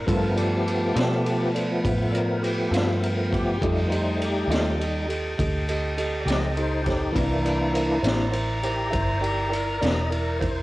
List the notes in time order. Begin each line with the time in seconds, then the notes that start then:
0.06 G2 F3 G3 A3 B3 F4 A4 A#4 B4 F5 A5, kick, ride
0.34 F4 G4 A4 D5, ride
0.65 F4 A4 B4, ride
0.94 B2 G3 B3 F4 A4 D5, ride
0.99 snare
1.24 F4 A4 B4, ride
1.54 F4 A4 D5, ride
1.84 A2 F4 A4 B4 G5, kick, ride
2.09 F4 A4 D5
2.14 A#4, ride
2.40 F4 G4 A4 B4, ride
2.71 G2 G3 B3 F4 A4 B4, ride
2.77 snare
3.00 F4 A4 A#4 B4, ride
3.32 F4 G4 A4 B4, kick, ride
3.61 F2 F3 G3 A3 D#4 G4 A4 D#5 A5, kick, ride
3.65 F4
3.87 B4
3.92 G4 A4 C5 D#5, ride
4.20 G4 A4 D#5, ride
4.48 D#2 G3 A3 D#4 F4 G4 A4 D#5, ride
4.52 F3, snare
4.77 G3 D#4 G4 A4 D#5, ride
5.08 G4 A4 D#5, ride
5.38 D2 G4 A4 D#5, kick, ride
5.68 G4 A4 D#5, ride
5.97 G4 A4 D#5, ride
6.20 D5
6.25 C#2 A3 D#4 G4 A4 D#5, ride
6.29 F3, snare
6.56 D#4 G4 A4 C5 D#5, ride
6.83 D#4 G4, kick, ride
6.87 A4 C5, snare
7.12 C2 C3 E3 A#3 D4 E4 A#4 D5, kick
7.16 E3 A#3 D4 D5 E5 A#5, ride
7.43 E4 A#4 D5, ride
7.74 E4 A#4 C5, ride
8.02 A1 E3 A#3 D4 E4 A#4 C5, ride
8.06 C3, snare
8.31 E4 A#4 C5, ride
8.63 E4 G4 A#4 C5, ride
8.90 G1 E4 A#4 C5 E5, kick, ride
9.21 E4 G4 A#4 D5, ride
9.49 E4 A#4 D5, ride
9.80 E1 C3 E3 A#3 D4 E4 A#4 D5 D#5, ride
9.85 snare
10.10 E4 A#4 D5, ride
10.39 E4 A#4 C5, kick, ride